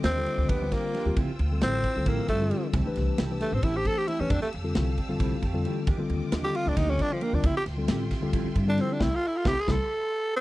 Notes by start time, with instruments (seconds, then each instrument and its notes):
Already playing: string section F4 D#5 G5 D6
0.04 upright bass D#2, clean electric guitar F3 A#3 D4 G4, tenor saxophone C4, snare, ride
0.17 tine electric piano D3 G3 C4 F4 A4
0.26 clean electric guitar A#3 D4 G4, ride
0.38 upright bass D2
0.49 upright bass D2, clean electric guitar F3 A#3 D4 G4, tenor saxophone B3, kick, ride
0.61 tine electric piano D3 G3 C4 F4 C5
0.71 clean electric guitar A#3 D4 G4, tenor saxophone A#3, kick, snare, ride
0.93 clean electric guitar F3 A#3 D4 G4, snare, ride
1.05 upright bass D#2, tine electric piano D3 G3 C4 F4 G4
1.16 upright bass D2, clean electric guitar F3 C4 E4 G4, string section C4 E6, kick, ride
1.28 muted upright bass stroke
1.39 upright bass D2, ride
1.51 tine electric piano D3 G3 C4 F4 A4
1.61 upright bass A1, clean electric guitar F3 C4 E4 G4, tenor saxophone C4, snare, ride
1.83 clean electric guitar C4 E4 G4, kick, ride
1.96 upright bass D2, tine electric piano D3 G3 C4 F4 A4
2.06 upright bass A1, clean electric guitar F3 C4 E4 G4, tenor saxophone A#3, kick, ride
2.19 muted upright bass stroke
2.28 upright bass G2, tenor saxophone A3, clean electric guitar C4 E4 G4, kick, ride
2.40 tine electric piano D3 G3 C4 F4 A4
2.51 clean electric guitar F3 C4 E4 G4, ride
2.73 upright bass C2, clean electric guitar E3 A3 C4 G4, string section G4 A5 E6, kick, ride
2.86 tine electric piano E3 A3 D4 G4 B4, muted upright bass stroke
2.96 upright bass C2, snare, ride
3.18 upright bass C2, clean electric guitar E3 A3 C4 G4, snare, ride
3.30 tine electric piano E3 A3 D4 G4 B4
3.40 tenor saxophone A3, clean electric guitar A3 C4 G4, snare, ride
3.52 upright bass A1, tenor saxophone C4
3.62 upright bass A1, clean electric guitar E3 A3 C4 G4, tenor saxophone E4, kick, ride
3.75 tine electric piano E3 A3 D4 G4 C5, tenor saxophone G4
3.85 clean electric guitar A3 C4 G4, tenor saxophone A4, kick, ride
3.98 tenor saxophone G4
4.08 clean electric guitar E3 A3 C4 G4, tenor saxophone E4, ride
4.19 upright bass E2, tine electric piano E3 A3 D4 G4 B4, tenor saxophone C#4
4.30 upright bass F2, clean electric guitar E3 A3 C4 G4, tenor saxophone D4, string section F5 A5, kick, ride
4.42 tenor saxophone A3, muted upright bass stroke
4.52 upright bass F2, ride
4.63 tine electric piano D3 G3 C4 F4 A4
4.75 upright bass C2, clean electric guitar E3 A3 C4 G4, snare, ride
4.98 clean electric guitar A3 C4 G4, kick, ride
5.08 upright bass F2, tine electric piano D3 G3 C4 F4 A4
5.20 upright bass C2, clean electric guitar E3 A3 C4 G4, kick, ride
5.32 muted upright bass stroke
5.42 upright bass F2, clean electric guitar A3 C4 G4, kick, ride
5.53 tine electric piano D3 G3 C4 F4 A4
5.65 clean electric guitar E3 A3 C4 G4, ride
5.87 upright bass D#2, clean electric guitar F3 A#3 D4 G4, string section F4 D#5 G5 D6, kick, ride
5.98 tine electric piano D3 G3 C4 F4 A4, muted upright bass stroke
6.10 upright bass D#2, ride
6.32 upright bass D#2, clean electric guitar F3 A#3 D4 G4, snare, ride
6.42 tine electric piano D3 G3 C4 F4 A4, tenor saxophone G4
6.55 tenor saxophone F4, ride
6.66 upright bass D2, tenor saxophone D4
6.76 upright bass D2, clean electric guitar F3 A#3 D4 G4, tenor saxophone D#4, kick, snare, ride
6.87 tine electric piano D3 G3 C4 F4 A4, tenor saxophone C#4
6.99 tenor saxophone D4, kick, ride
7.13 tenor saxophone F3
7.21 clean electric guitar F3 A#3 D4 G4, tenor saxophone A#3, ride
7.33 upright bass D#2, tine electric piano D3 G3 C4 F4 A#4, tenor saxophone D4
7.43 upright bass D2, clean electric guitar F3 C4 E4 G4, tenor saxophone E4, string section F4 E5 C6, kick, ride
7.55 tenor saxophone G4, muted upright bass stroke
7.66 upright bass D2, snare, ride
7.77 tine electric piano D3 G3 C4 F4 A4
7.88 upright bass A1, clean electric guitar F3 C4 E4 G4, snare, ride
8.11 clean electric guitar C4 E4 G4, kick, snare, ride
8.21 upright bass D2, tine electric piano D3 G3 C4 F4 A4
8.33 upright bass A1, clean electric guitar F3 C4 E4 G4, kick, ride
8.44 muted upright bass stroke
8.55 upright bass G2, clean electric guitar C4 E4 G4, kick, ride
8.66 tine electric piano D3 G3 C4 F4 A4, tenor saxophone D4
8.78 clean electric guitar F3 C4 E4 G4, tenor saxophone C4, snare, ride
8.92 tenor saxophone D4
8.99 upright bass C2, clean electric guitar A3 C4 E4, tine electric piano A3 C4 E4, tenor saxophone E4, string section A4 C6, kick, snare
9.15 tenor saxophone F4
9.27 tenor saxophone E4
9.37 tenor saxophone F4
9.45 upright bass C2, clean electric guitar A3 C4 E4, tine electric piano A3 C4 E4, tenor saxophone G4, kick, snare
9.60 tenor saxophone G#4
9.67 upright bass C2, clean electric guitar A3 C4 E4, tine electric piano A3 C4 E4, kick, snare
9.71 tenor saxophone A4
10.37 tenor saxophone C4